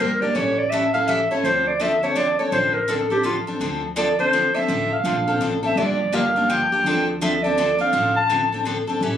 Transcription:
0.00 G1 D3 F3 A#3 D4 G4 A#4
0.21 A#3 D4 G4 D5
0.35 A1 E3 G3 C#4 E4 A4 C#5
0.58 D5
0.70 E3 G3 C#4 E4 A4 E5
0.93 C#4 E4 A4 F5
1.08 E3 G3 C#4 E4 A4 E5
1.31 C#4 E4 A4 C#5
1.43 D2 D3 F3 C4 D4 A4 C5
1.67 D5
1.80 D3 F3 C4 D4 A4 E5
2.03 C4 D4 A4 C#5
2.15 D3 F3 C4 D4 A4 D5
2.38 C4 D4 A4 C#5
2.52 A1 D3 F3 C4 D4 A4 C5
2.74 A#4
2.88 D3 F3 C4 D4 A4
3.10 C4 D4 G4 A4
3.23 D3 F3 C4 D4 F4 A4
3.47 C4 D4 A4
3.60 D2 D3 F3 C4 D4 A4
3.96 D3 F3 C4 D4 A4 D5
4.19 C4 D4 A4 C5
4.33 D3 F3 C4 D4 A4
4.54 C4 D4 A4 E5
4.68 A1 D3 F3 C4 D4 A4
4.93 F5
5.04 A#1 D3 F3 C4 D4 A4
5.28 C4 D4 A4
5.40 A1 D3 F3 C4 D4 A4
5.63 C4 D4 A4 E5
5.75 G1 D3 F3 A#3 D4 G4 D5
6.12 D3 F3 A#3 D4 G4 F5
6.36 A#3 D4 G4
6.49 D3 F3 A#3 D4 G4 G5
6.72 A#3 D4 G4
6.84 D2 D3 F3 C4 D4 A4
7.21 D3 F3 C4 D4 A4 E5
7.43 C4 D4 A4 D5
7.58 D3 F3 C4 D4 A4
7.79 C4 D4 A4 F5
7.93 A1 D3 F3 C4 D4 A4
8.16 A5
8.30 D3 F3 C4 D4 A4
8.52 C4 D4 A4
8.65 D3 F3 C4 D4 A4
8.87 C4 D4 A4
9.01 A1 E3 G3 C#4 E4 A4

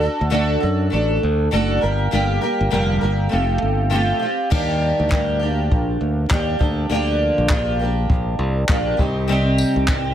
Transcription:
0.01 D4 F#4 A4
0.21 D2
0.30 D3 A3 D4 F#4 A4
0.60 F#2 D4 F#4 A4
0.90 A1 A3 D4 F#4 A4
1.23 D2
1.51 F#1 D3 A3 D4 F#4 A4
1.81 G1 G3 A#3 G4 A#4
2.11 G1 G2 D3 G3 A#3 G4 A#4
2.41 G3 A#3 G4 A#4
2.61 G1
2.70 F1 G2 D3 G3 A#3 G4 A#4
3.01 G1 G3 A#3 G4 A#4
3.29 F1 A3 C4 F4 G4
3.62 G1
3.90 F3 A3 C4 F4 G4
4.19 C4 F4 G4
4.50 D#2 D#3 G3 A#3 D4 G4, kick, crash
5.00 D2
5.09 G3 A#3 D4 G4, kick, clap
5.39 A#3 D4 G4
5.71 A#1, kick
6.01 D2
6.29 D#2 G3 A#3 D4 G4, kick, clap
6.59 D2 A#3 D4 G4, kick
6.90 D2 D3 F3 A#3 D4 G4
7.38 A#1
7.49 F3 A#3 D4 G4, kick, clap
7.79 A#3 D4 G4
8.10 A#1, kick
8.39 C2
8.68 A#1 F3 A#3 D4 G4, kick, clap
8.97 C2 C4 D#4 G4, kick
9.28 C3 G3 C4 D#4 G4
9.58 tambourine
9.76 C2
9.87 G3 D#4 G4, kick, clap

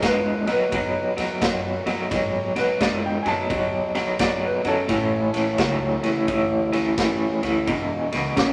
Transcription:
0.00 D#2 B2 G#3 A#4, kick, snare, ride
0.05 B4
0.46 D#2 B2 F#3 A#4, snare, ride
0.51 B4
0.72 E2 B2 F#3, kick, ride
1.17 E2 B2 F#3, snare, ride
1.41 F#2 B2 F#3, kick, snare, ride
1.86 F#2 B2 F#3, snare, ride
2.11 G#2 B2 F#3, kick, snare, ride
2.56 G#2 B2 F#3 B4, snare, ride
2.81 F#2 B2 G#3 D5, kick, snare, ride
3.06 G5
3.23 F#2 B2 F#3 G#5, snare, ride
3.28 A5
3.50 D#2 B2 F#3, kick, ride
3.95 B2 F#3, snare, ride
4.19 F#2 B2 F#3 D5, kick, snare, ride
4.45 B4
4.64 F#2 B2 F#3 C#4 A4, snare, ride
4.88 A1 A2 E3, kick, snare, ride
5.34 A1 A2 E3, snare, ride
5.58 C#2 A2 F#3, kick, snare, ride
6.03 C#2 A2 E3, snare, ride
6.28 D2 A2 E3, kick, ride
6.72 D2 A2 E3, snare, ride
6.98 E2 A2 E3, kick, snare, ride
7.42 D2 A2 E3, snare, ride
7.67 E1 E2 B2, kick, ride
8.12 C#2 E2 B2, snare, ride
8.36 B1 E2 C#3 D6, kick, snare, ride

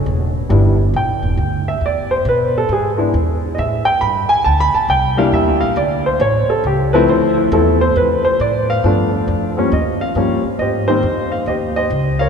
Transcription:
0.06 E1
0.49 G1 G3 B3 D4 E4
0.94 B1 G5
1.08 G1
1.22 E1
1.37 D2
1.68 E5
1.81 E2
1.86 D5
2.11 C5
2.25 B2 B4
2.58 A4
2.69 G#2 G#4
2.97 G#3 B3 D4 E4
3.14 E2
3.55 A2 D#5
3.59 E5
3.85 G5, muted upright bass stroke
4.01 G2 B5
4.29 G#5, muted upright bass stroke
4.44 D2 A5
4.60 B5
4.74 A5, muted upright bass stroke
4.88 C2 G5
5.17 G3 A#3 D4 E4 F5
5.32 E2 E5
5.47 D2
5.61 A#1 F5
5.76 D2 D5
6.06 C5
6.20 A1 C#5
6.48 A4, muted upright bass stroke
6.64 C#2 G4
6.93 F3 A3 C4 E4 B4
7.08 D2 C5
7.38 E4
7.52 E2 F3 A3 C4 E4 A4
7.81 C5
7.96 F2 B4
8.25 C5, muted upright bass stroke
8.40 A2 D5
8.70 F5
8.84 G2 F3 A3 B3 D4
9.28 F2
9.57 F3 G3 A#3 C#4
9.72 D#2 D#5
10.01 F5
10.15 G2 F3 G3 A#3 C#4
10.44 muted upright bass stroke
10.59 G#2 G4 C5 D#5
10.87 D#3 G3 A#3 C4 D#4 G4 C5
11.03 F2
11.32 F5
11.46 D#2 G4 C5 D#5
11.76 G4 C5 D#5
11.90 C#2
12.19 A#4 C#5 F5

